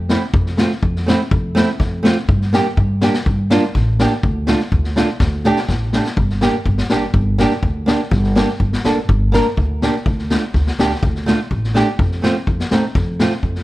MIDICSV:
0, 0, Header, 1, 4, 480
1, 0, Start_track
1, 0, Key_signature, -1, "minor"
1, 0, Tempo, 484653
1, 339, Time_signature, 4, 2, 24, 8
1, 6117, Key_signature, -2, "minor"
1, 13500, End_track
2, 0, Start_track
2, 0, Title_t, "Nylon-string guitar"
2, 0, Program_c, 0, 24
2, 96, Note_on_c, 0, 57, 74
2, 101, Note_on_c, 0, 60, 59
2, 108, Note_on_c, 0, 64, 78
2, 218, Note_off_c, 0, 57, 0
2, 220, Note_off_c, 0, 60, 0
2, 223, Note_off_c, 0, 64, 0
2, 568, Note_on_c, 0, 57, 70
2, 579, Note_on_c, 0, 60, 69
2, 589, Note_on_c, 0, 65, 78
2, 694, Note_off_c, 0, 57, 0
2, 700, Note_off_c, 0, 60, 0
2, 704, Note_off_c, 0, 65, 0
2, 1054, Note_on_c, 0, 57, 73
2, 1068, Note_on_c, 0, 60, 74
2, 1077, Note_on_c, 0, 64, 78
2, 1178, Note_off_c, 0, 57, 0
2, 1185, Note_off_c, 0, 60, 0
2, 1189, Note_off_c, 0, 64, 0
2, 1533, Note_on_c, 0, 57, 84
2, 1545, Note_on_c, 0, 60, 82
2, 1556, Note_on_c, 0, 64, 96
2, 1658, Note_off_c, 0, 57, 0
2, 1664, Note_off_c, 0, 60, 0
2, 1670, Note_off_c, 0, 64, 0
2, 2007, Note_on_c, 0, 57, 78
2, 2016, Note_on_c, 0, 60, 62
2, 2030, Note_on_c, 0, 65, 91
2, 2136, Note_off_c, 0, 57, 0
2, 2140, Note_off_c, 0, 60, 0
2, 2147, Note_off_c, 0, 65, 0
2, 2502, Note_on_c, 0, 58, 78
2, 2510, Note_on_c, 0, 62, 64
2, 2521, Note_on_c, 0, 67, 94
2, 2624, Note_off_c, 0, 58, 0
2, 2628, Note_off_c, 0, 62, 0
2, 2634, Note_off_c, 0, 67, 0
2, 2987, Note_on_c, 0, 58, 77
2, 2993, Note_on_c, 0, 62, 76
2, 3009, Note_on_c, 0, 67, 86
2, 3108, Note_off_c, 0, 58, 0
2, 3109, Note_off_c, 0, 62, 0
2, 3118, Note_off_c, 0, 67, 0
2, 3472, Note_on_c, 0, 58, 86
2, 3477, Note_on_c, 0, 62, 89
2, 3490, Note_on_c, 0, 65, 96
2, 3590, Note_off_c, 0, 58, 0
2, 3593, Note_off_c, 0, 62, 0
2, 3599, Note_off_c, 0, 65, 0
2, 3957, Note_on_c, 0, 58, 79
2, 3963, Note_on_c, 0, 62, 65
2, 3977, Note_on_c, 0, 67, 83
2, 4074, Note_off_c, 0, 58, 0
2, 4077, Note_off_c, 0, 62, 0
2, 4084, Note_off_c, 0, 67, 0
2, 4425, Note_on_c, 0, 57, 83
2, 4437, Note_on_c, 0, 62, 65
2, 4444, Note_on_c, 0, 65, 98
2, 4549, Note_off_c, 0, 57, 0
2, 4555, Note_off_c, 0, 62, 0
2, 4558, Note_off_c, 0, 65, 0
2, 4912, Note_on_c, 0, 57, 68
2, 4919, Note_on_c, 0, 62, 62
2, 4927, Note_on_c, 0, 65, 67
2, 5033, Note_off_c, 0, 57, 0
2, 5037, Note_off_c, 0, 62, 0
2, 5038, Note_off_c, 0, 65, 0
2, 5399, Note_on_c, 0, 57, 85
2, 5408, Note_on_c, 0, 62, 80
2, 5417, Note_on_c, 0, 67, 97
2, 5517, Note_off_c, 0, 57, 0
2, 5522, Note_off_c, 0, 62, 0
2, 5526, Note_off_c, 0, 67, 0
2, 5880, Note_on_c, 0, 57, 70
2, 5892, Note_on_c, 0, 62, 62
2, 5900, Note_on_c, 0, 67, 77
2, 5998, Note_off_c, 0, 57, 0
2, 6004, Note_off_c, 0, 62, 0
2, 6008, Note_off_c, 0, 67, 0
2, 6350, Note_on_c, 0, 58, 72
2, 6359, Note_on_c, 0, 62, 72
2, 6365, Note_on_c, 0, 67, 82
2, 6474, Note_off_c, 0, 58, 0
2, 6478, Note_off_c, 0, 62, 0
2, 6481, Note_off_c, 0, 67, 0
2, 6832, Note_on_c, 0, 58, 68
2, 6840, Note_on_c, 0, 62, 64
2, 6851, Note_on_c, 0, 67, 77
2, 6955, Note_off_c, 0, 58, 0
2, 6959, Note_off_c, 0, 62, 0
2, 6965, Note_off_c, 0, 67, 0
2, 7313, Note_on_c, 0, 58, 86
2, 7328, Note_on_c, 0, 62, 73
2, 7337, Note_on_c, 0, 67, 95
2, 7436, Note_off_c, 0, 58, 0
2, 7444, Note_off_c, 0, 62, 0
2, 7448, Note_off_c, 0, 67, 0
2, 7785, Note_on_c, 0, 58, 76
2, 7797, Note_on_c, 0, 62, 70
2, 7804, Note_on_c, 0, 67, 86
2, 7912, Note_off_c, 0, 58, 0
2, 7918, Note_off_c, 0, 62, 0
2, 7922, Note_off_c, 0, 67, 0
2, 8274, Note_on_c, 0, 58, 75
2, 8279, Note_on_c, 0, 62, 69
2, 8291, Note_on_c, 0, 67, 83
2, 8397, Note_off_c, 0, 58, 0
2, 8400, Note_off_c, 0, 62, 0
2, 8406, Note_off_c, 0, 67, 0
2, 8760, Note_on_c, 0, 58, 73
2, 8766, Note_on_c, 0, 62, 60
2, 8776, Note_on_c, 0, 69, 74
2, 8880, Note_off_c, 0, 58, 0
2, 8883, Note_off_c, 0, 62, 0
2, 8888, Note_off_c, 0, 69, 0
2, 9231, Note_on_c, 0, 58, 90
2, 9245, Note_on_c, 0, 62, 72
2, 9253, Note_on_c, 0, 70, 98
2, 9355, Note_off_c, 0, 58, 0
2, 9362, Note_off_c, 0, 62, 0
2, 9367, Note_off_c, 0, 70, 0
2, 9727, Note_on_c, 0, 58, 74
2, 9736, Note_on_c, 0, 62, 75
2, 9744, Note_on_c, 0, 67, 78
2, 9843, Note_off_c, 0, 58, 0
2, 9847, Note_off_c, 0, 62, 0
2, 9852, Note_off_c, 0, 67, 0
2, 10204, Note_on_c, 0, 57, 70
2, 10218, Note_on_c, 0, 62, 71
2, 10225, Note_on_c, 0, 65, 79
2, 10321, Note_off_c, 0, 57, 0
2, 10328, Note_off_c, 0, 62, 0
2, 10331, Note_off_c, 0, 65, 0
2, 10684, Note_on_c, 0, 57, 62
2, 10690, Note_on_c, 0, 62, 59
2, 10701, Note_on_c, 0, 67, 77
2, 10800, Note_off_c, 0, 57, 0
2, 10803, Note_off_c, 0, 62, 0
2, 10809, Note_off_c, 0, 67, 0
2, 11155, Note_on_c, 0, 57, 93
2, 11165, Note_on_c, 0, 62, 66
2, 11173, Note_on_c, 0, 65, 85
2, 11275, Note_off_c, 0, 57, 0
2, 11280, Note_off_c, 0, 62, 0
2, 11284, Note_off_c, 0, 65, 0
2, 11630, Note_on_c, 0, 57, 71
2, 11639, Note_on_c, 0, 62, 74
2, 11652, Note_on_c, 0, 67, 86
2, 11751, Note_off_c, 0, 57, 0
2, 11755, Note_off_c, 0, 62, 0
2, 11762, Note_off_c, 0, 67, 0
2, 12104, Note_on_c, 0, 57, 63
2, 12117, Note_on_c, 0, 60, 65
2, 12124, Note_on_c, 0, 65, 93
2, 12227, Note_off_c, 0, 57, 0
2, 12233, Note_off_c, 0, 60, 0
2, 12236, Note_off_c, 0, 65, 0
2, 12591, Note_on_c, 0, 57, 63
2, 12598, Note_on_c, 0, 60, 60
2, 12607, Note_on_c, 0, 63, 78
2, 12709, Note_off_c, 0, 57, 0
2, 12712, Note_off_c, 0, 60, 0
2, 12717, Note_off_c, 0, 63, 0
2, 13072, Note_on_c, 0, 57, 76
2, 13082, Note_on_c, 0, 60, 75
2, 13090, Note_on_c, 0, 65, 89
2, 13187, Note_off_c, 0, 57, 0
2, 13192, Note_off_c, 0, 60, 0
2, 13196, Note_off_c, 0, 65, 0
2, 13500, End_track
3, 0, Start_track
3, 0, Title_t, "Upright bass"
3, 0, Program_c, 1, 32
3, 0, Note_on_c, 1, 41, 90
3, 143, Note_off_c, 1, 41, 0
3, 332, Note_on_c, 1, 41, 98
3, 623, Note_off_c, 1, 41, 0
3, 818, Note_on_c, 1, 41, 86
3, 1107, Note_off_c, 1, 41, 0
3, 1301, Note_on_c, 1, 41, 98
3, 1590, Note_off_c, 1, 41, 0
3, 1778, Note_on_c, 1, 41, 95
3, 2068, Note_off_c, 1, 41, 0
3, 2262, Note_on_c, 1, 43, 90
3, 2552, Note_off_c, 1, 43, 0
3, 2744, Note_on_c, 1, 43, 97
3, 3033, Note_off_c, 1, 43, 0
3, 3231, Note_on_c, 1, 43, 99
3, 3519, Note_off_c, 1, 43, 0
3, 3712, Note_on_c, 1, 33, 92
3, 4000, Note_off_c, 1, 33, 0
3, 4193, Note_on_c, 1, 38, 90
3, 4481, Note_off_c, 1, 38, 0
3, 4673, Note_on_c, 1, 38, 92
3, 4962, Note_off_c, 1, 38, 0
3, 5149, Note_on_c, 1, 38, 97
3, 5439, Note_off_c, 1, 38, 0
3, 5628, Note_on_c, 1, 33, 86
3, 5919, Note_off_c, 1, 33, 0
3, 6106, Note_on_c, 1, 31, 83
3, 6398, Note_off_c, 1, 31, 0
3, 6595, Note_on_c, 1, 31, 96
3, 6740, Note_off_c, 1, 31, 0
3, 6830, Note_on_c, 1, 31, 68
3, 6977, Note_off_c, 1, 31, 0
3, 7069, Note_on_c, 1, 31, 103
3, 7360, Note_off_c, 1, 31, 0
3, 7552, Note_on_c, 1, 38, 94
3, 7843, Note_off_c, 1, 38, 0
3, 8033, Note_on_c, 1, 31, 104
3, 8324, Note_off_c, 1, 31, 0
3, 8516, Note_on_c, 1, 31, 97
3, 8662, Note_off_c, 1, 31, 0
3, 8770, Note_on_c, 1, 31, 62
3, 8911, Note_off_c, 1, 31, 0
3, 9001, Note_on_c, 1, 31, 106
3, 9288, Note_off_c, 1, 31, 0
3, 9479, Note_on_c, 1, 38, 104
3, 9767, Note_off_c, 1, 38, 0
3, 9961, Note_on_c, 1, 38, 100
3, 10248, Note_off_c, 1, 38, 0
3, 10439, Note_on_c, 1, 38, 84
3, 10582, Note_off_c, 1, 38, 0
3, 10682, Note_on_c, 1, 38, 75
3, 10824, Note_off_c, 1, 38, 0
3, 10923, Note_on_c, 1, 38, 98
3, 11208, Note_off_c, 1, 38, 0
3, 11398, Note_on_c, 1, 33, 97
3, 11683, Note_off_c, 1, 33, 0
3, 11875, Note_on_c, 1, 41, 97
3, 12160, Note_off_c, 1, 41, 0
3, 12351, Note_on_c, 1, 41, 86
3, 12494, Note_off_c, 1, 41, 0
3, 12591, Note_on_c, 1, 41, 56
3, 12733, Note_off_c, 1, 41, 0
3, 12826, Note_on_c, 1, 41, 98
3, 13112, Note_off_c, 1, 41, 0
3, 13298, Note_on_c, 1, 41, 89
3, 13500, Note_off_c, 1, 41, 0
3, 13500, End_track
4, 0, Start_track
4, 0, Title_t, "Drums"
4, 90, Note_on_c, 9, 38, 82
4, 189, Note_off_c, 9, 38, 0
4, 333, Note_on_c, 9, 36, 91
4, 432, Note_off_c, 9, 36, 0
4, 457, Note_on_c, 9, 38, 22
4, 557, Note_off_c, 9, 38, 0
4, 573, Note_on_c, 9, 38, 86
4, 672, Note_off_c, 9, 38, 0
4, 700, Note_on_c, 9, 38, 25
4, 799, Note_off_c, 9, 38, 0
4, 818, Note_on_c, 9, 36, 70
4, 917, Note_off_c, 9, 36, 0
4, 950, Note_on_c, 9, 38, 27
4, 1049, Note_off_c, 9, 38, 0
4, 1069, Note_on_c, 9, 38, 87
4, 1168, Note_off_c, 9, 38, 0
4, 1301, Note_on_c, 9, 36, 88
4, 1400, Note_off_c, 9, 36, 0
4, 1545, Note_on_c, 9, 38, 80
4, 1644, Note_off_c, 9, 38, 0
4, 1781, Note_on_c, 9, 36, 68
4, 1781, Note_on_c, 9, 38, 27
4, 1880, Note_off_c, 9, 36, 0
4, 1880, Note_off_c, 9, 38, 0
4, 2025, Note_on_c, 9, 38, 89
4, 2124, Note_off_c, 9, 38, 0
4, 2265, Note_on_c, 9, 36, 85
4, 2364, Note_off_c, 9, 36, 0
4, 2390, Note_on_c, 9, 38, 22
4, 2489, Note_off_c, 9, 38, 0
4, 2510, Note_on_c, 9, 38, 92
4, 2609, Note_off_c, 9, 38, 0
4, 2747, Note_on_c, 9, 36, 69
4, 2846, Note_off_c, 9, 36, 0
4, 2984, Note_on_c, 9, 38, 86
4, 3083, Note_off_c, 9, 38, 0
4, 3106, Note_on_c, 9, 38, 68
4, 3205, Note_off_c, 9, 38, 0
4, 3230, Note_on_c, 9, 36, 81
4, 3329, Note_off_c, 9, 36, 0
4, 3468, Note_on_c, 9, 38, 83
4, 3567, Note_off_c, 9, 38, 0
4, 3714, Note_on_c, 9, 36, 63
4, 3718, Note_on_c, 9, 38, 25
4, 3813, Note_off_c, 9, 36, 0
4, 3817, Note_off_c, 9, 38, 0
4, 3955, Note_on_c, 9, 38, 80
4, 4054, Note_off_c, 9, 38, 0
4, 4193, Note_on_c, 9, 36, 76
4, 4292, Note_off_c, 9, 36, 0
4, 4427, Note_on_c, 9, 38, 84
4, 4526, Note_off_c, 9, 38, 0
4, 4557, Note_on_c, 9, 38, 23
4, 4656, Note_off_c, 9, 38, 0
4, 4674, Note_on_c, 9, 36, 68
4, 4773, Note_off_c, 9, 36, 0
4, 4794, Note_on_c, 9, 38, 25
4, 4893, Note_off_c, 9, 38, 0
4, 4915, Note_on_c, 9, 38, 76
4, 5014, Note_off_c, 9, 38, 0
4, 5144, Note_on_c, 9, 38, 50
4, 5151, Note_on_c, 9, 36, 82
4, 5243, Note_off_c, 9, 38, 0
4, 5250, Note_off_c, 9, 36, 0
4, 5389, Note_on_c, 9, 38, 57
4, 5488, Note_off_c, 9, 38, 0
4, 5510, Note_on_c, 9, 38, 52
4, 5609, Note_off_c, 9, 38, 0
4, 5631, Note_on_c, 9, 36, 60
4, 5633, Note_on_c, 9, 38, 59
4, 5730, Note_off_c, 9, 36, 0
4, 5732, Note_off_c, 9, 38, 0
4, 5870, Note_on_c, 9, 38, 75
4, 5969, Note_off_c, 9, 38, 0
4, 5995, Note_on_c, 9, 38, 60
4, 6094, Note_off_c, 9, 38, 0
4, 6111, Note_on_c, 9, 36, 87
4, 6210, Note_off_c, 9, 36, 0
4, 6237, Note_on_c, 9, 38, 24
4, 6336, Note_off_c, 9, 38, 0
4, 6351, Note_on_c, 9, 38, 85
4, 6450, Note_off_c, 9, 38, 0
4, 6592, Note_on_c, 9, 36, 69
4, 6691, Note_off_c, 9, 36, 0
4, 6712, Note_on_c, 9, 38, 62
4, 6811, Note_off_c, 9, 38, 0
4, 6828, Note_on_c, 9, 38, 83
4, 6927, Note_off_c, 9, 38, 0
4, 7069, Note_on_c, 9, 36, 85
4, 7168, Note_off_c, 9, 36, 0
4, 7314, Note_on_c, 9, 38, 81
4, 7413, Note_off_c, 9, 38, 0
4, 7429, Note_on_c, 9, 38, 27
4, 7528, Note_off_c, 9, 38, 0
4, 7553, Note_on_c, 9, 36, 65
4, 7653, Note_off_c, 9, 36, 0
4, 7798, Note_on_c, 9, 38, 77
4, 7897, Note_off_c, 9, 38, 0
4, 8037, Note_on_c, 9, 36, 92
4, 8041, Note_on_c, 9, 38, 26
4, 8136, Note_off_c, 9, 36, 0
4, 8140, Note_off_c, 9, 38, 0
4, 8158, Note_on_c, 9, 38, 21
4, 8257, Note_off_c, 9, 38, 0
4, 8278, Note_on_c, 9, 38, 87
4, 8377, Note_off_c, 9, 38, 0
4, 8400, Note_on_c, 9, 38, 23
4, 8499, Note_off_c, 9, 38, 0
4, 8517, Note_on_c, 9, 36, 58
4, 8616, Note_off_c, 9, 36, 0
4, 8645, Note_on_c, 9, 38, 62
4, 8744, Note_off_c, 9, 38, 0
4, 8757, Note_on_c, 9, 38, 85
4, 8856, Note_off_c, 9, 38, 0
4, 9002, Note_on_c, 9, 36, 87
4, 9101, Note_off_c, 9, 36, 0
4, 9245, Note_on_c, 9, 38, 84
4, 9344, Note_off_c, 9, 38, 0
4, 9483, Note_on_c, 9, 36, 65
4, 9582, Note_off_c, 9, 36, 0
4, 9726, Note_on_c, 9, 38, 72
4, 9825, Note_off_c, 9, 38, 0
4, 9962, Note_on_c, 9, 36, 85
4, 10061, Note_off_c, 9, 36, 0
4, 10087, Note_on_c, 9, 38, 21
4, 10186, Note_off_c, 9, 38, 0
4, 10205, Note_on_c, 9, 38, 89
4, 10304, Note_off_c, 9, 38, 0
4, 10442, Note_on_c, 9, 36, 62
4, 10446, Note_on_c, 9, 38, 24
4, 10541, Note_off_c, 9, 36, 0
4, 10545, Note_off_c, 9, 38, 0
4, 10566, Note_on_c, 9, 38, 58
4, 10665, Note_off_c, 9, 38, 0
4, 10688, Note_on_c, 9, 38, 87
4, 10787, Note_off_c, 9, 38, 0
4, 10920, Note_on_c, 9, 36, 92
4, 11019, Note_off_c, 9, 36, 0
4, 11045, Note_on_c, 9, 38, 24
4, 11144, Note_off_c, 9, 38, 0
4, 11161, Note_on_c, 9, 38, 68
4, 11260, Note_off_c, 9, 38, 0
4, 11398, Note_on_c, 9, 36, 56
4, 11497, Note_off_c, 9, 36, 0
4, 11527, Note_on_c, 9, 38, 25
4, 11626, Note_off_c, 9, 38, 0
4, 11637, Note_on_c, 9, 38, 77
4, 11737, Note_off_c, 9, 38, 0
4, 11875, Note_on_c, 9, 36, 84
4, 11974, Note_off_c, 9, 36, 0
4, 11999, Note_on_c, 9, 38, 19
4, 12098, Note_off_c, 9, 38, 0
4, 12116, Note_on_c, 9, 38, 87
4, 12215, Note_off_c, 9, 38, 0
4, 12352, Note_on_c, 9, 36, 71
4, 12451, Note_off_c, 9, 36, 0
4, 12476, Note_on_c, 9, 38, 62
4, 12575, Note_off_c, 9, 38, 0
4, 12585, Note_on_c, 9, 38, 79
4, 12685, Note_off_c, 9, 38, 0
4, 12825, Note_on_c, 9, 38, 26
4, 12827, Note_on_c, 9, 36, 89
4, 12924, Note_off_c, 9, 38, 0
4, 12926, Note_off_c, 9, 36, 0
4, 13067, Note_on_c, 9, 38, 78
4, 13166, Note_off_c, 9, 38, 0
4, 13186, Note_on_c, 9, 38, 25
4, 13285, Note_off_c, 9, 38, 0
4, 13301, Note_on_c, 9, 36, 51
4, 13400, Note_off_c, 9, 36, 0
4, 13421, Note_on_c, 9, 38, 26
4, 13500, Note_off_c, 9, 38, 0
4, 13500, End_track
0, 0, End_of_file